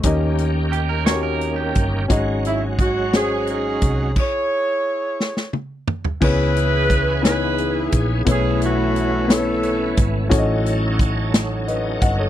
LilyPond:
<<
  \new Staff \with { instrumentName = "Clean electric guitar" } { \time 6/8 \key cis \minor \tempo 4. = 58 r4 g'16 ais'16 cis''16 ais'8 g'8. | r2. | r2. | r2. |
r2. | r2. | }
  \new Staff \with { instrumentName = "Grand piano" } { \time 6/8 \key cis \minor <cis' g' ais' dis''>4 r8 <cis' fis' g' ais' cis''>4 r8 | <cis' fis' gis' dis''>4 r8 <cis' fis' gis' bis' cis''>4 r8 | r2. | <b e' gis' cis''>4 r8 <b dis' e' gis' cis''>4 r8 |
<a b e' cis''>4 r8 <b e' a' cis''>4 r8 | <cis' fis' a' cis'' dis''>4 r4 <b' dis''>8 <dis'' fis''>16 <a' cis''>16 | }
  \new Staff \with { instrumentName = "Grand piano" } { \clef bass \time 6/8 \key cis \minor dis4. r4. | gis,4. r4. | r2. | cis4. r4. |
b,4. r4. | a,4. r4. | }
  \new Staff \with { instrumentName = "Saxophone section" } { \time 6/8 \key cis \minor << { r2. | r8 e'8 fis'8 gis'8 gis'4 | cis''2 r4 | b'4. b'4 r8 |
gis'8 fis'4 a'4 r8 | r2. | } \\ { r2. | r2 <cis' dis'>4 | <e' gis'>2 r4 | <e' gis'>4. <e' gis'>4. |
<cis' e'>8 <a cis'>4 <cis' e'>4. | r2. | } >> }
  \new Staff \with { instrumentName = "Tonewheel organ" } { \time 6/8 \key cis \minor << { r2. | r2. | r2. | r2. |
r2. | r2 dis''8 fis''16 dis''16 | } \\ { <dis ais cis' g'>2. | <fis gis cis' fis'>2. | r2. | <e b cis' gis'>2. |
<e a b cis'>2. | <fis cis' dis' gis' a'>2. | } >> }
  \new Staff \with { instrumentName = "Fingered electric bass" } { \clef bass \time 6/8 \key cis \minor dis,2~ dis,8 g,,8 | gis,,2~ gis,,8 bis,,8 | r2. | cis,2~ cis,8 ais,,8 |
b,,2~ b,,8 gis,,8 | a,,2~ a,,8 g,,8 | }
  \new DrumStaff \with { instrumentName = "Drums" } \drummode { \time 6/8 <hh bd>8 hh8 hh8 <hh sn>8 hh8 <hh bd>8 | <hh bd>8 hh8 <hh bd>8 <hh sn>8 hh8 <hh bd>8 | <cymc bd>4. sn16 sn16 tommh8 toml16 tomfh16 | <cymc bd>8 hh8 <hh bd>8 <hh sn>8 hh8 <hh bd>8 |
<hh bd>8 hh8 hh8 <hh sn>8 hh8 <hh bd>8 | <hh bd>8 hh8 <hh bd>8 <hh sn>8 hh8 <hh bd>8 | }
>>